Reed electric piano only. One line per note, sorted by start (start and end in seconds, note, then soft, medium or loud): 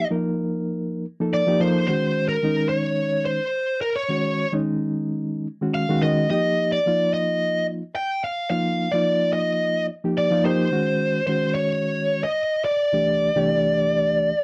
0.10 1.04 F3 medium
0.10 1.05 A#3 medium
0.10 1.05 D#4 medium
0.10 1.05 A#4 medium
1.20 1.44 F3 medium
1.20 1.44 A#3 medium
1.20 1.44 D#4 medium
1.20 1.45 A4 medium
1.47 1.59 F3 medium
1.47 1.59 A#3 medium
1.47 1.59 D#4 medium
1.47 1.59 G4 medium
1.60 1.85 F3 medium
1.60 1.85 A#3 medium
1.60 1.85 D#4 medium
1.60 1.85 A4 medium
1.88 2.36 D#3 medium
1.88 2.36 G#3 medium
1.88 2.37 C#4 medium
1.88 2.37 F#4 medium
2.43 3.39 D#3 medium
2.43 3.39 G#3 medium
2.43 3.39 C#4 medium
2.43 3.40 D#4 medium
4.08 4.45 D#3 medium
4.08 4.45 G#3 medium
4.08 4.45 C#4 medium
4.08 4.46 F#4 medium
4.52 5.46 D#3 medium
4.52 5.46 G#3 medium
4.52 5.46 C#4 medium
4.52 5.47 D#4 medium
5.61 5.85 D#3 medium
5.61 5.86 G#3 medium
5.61 5.86 C#4 medium
5.61 5.86 F#4 medium
5.89 6.01 D#3 medium
5.89 6.01 G#3 medium
5.89 6.01 C#4 medium
5.89 6.01 F#4 medium
6.02 6.26 D#3 medium
6.02 6.27 G#3 medium
6.02 6.27 C#4 medium
6.02 6.27 F#4 medium
6.29 6.78 F3 medium
6.29 6.78 A#3 medium
6.29 6.78 D#4 medium
6.29 6.78 G4 medium
6.86 7.81 F3 medium
6.86 7.82 A#3 medium
6.86 7.82 D#4 medium
6.86 7.82 F4 medium
8.50 8.87 F3 medium
8.50 8.87 A#3 medium
8.50 8.87 D#4 medium
8.50 8.87 F4 medium
8.93 9.88 F3 medium
8.93 9.88 A#3 medium
8.93 9.88 D#4 medium
8.93 9.88 F4 medium
10.04 10.27 F3 medium
10.04 10.28 A#3 medium
10.04 10.28 D#4 medium
10.04 10.28 G4 medium
10.31 10.42 F3 medium
10.31 10.43 A#3 medium
10.31 10.43 D#4 medium
10.31 10.43 F4 medium
10.44 10.68 F3 medium
10.44 10.68 A#3 medium
10.44 10.69 D#4 medium
10.44 10.69 G4 medium
10.71 11.20 D#3 medium
10.71 11.20 G#3 medium
10.71 11.20 C#4 medium
10.71 11.21 F#4 medium
11.27 12.23 D#3 medium
11.27 12.23 G#3 medium
11.27 12.24 C#4 medium
11.27 12.24 F#4 medium
12.92 13.29 C2 medium
12.92 13.29 E3 medium
12.92 13.30 A3 medium
12.92 13.30 D4 medium
12.92 13.30 G4 medium
13.35 14.30 C2 medium
13.35 14.30 E3 medium
13.35 14.31 A3 medium
13.35 14.31 D4 medium
13.35 14.31 G4 medium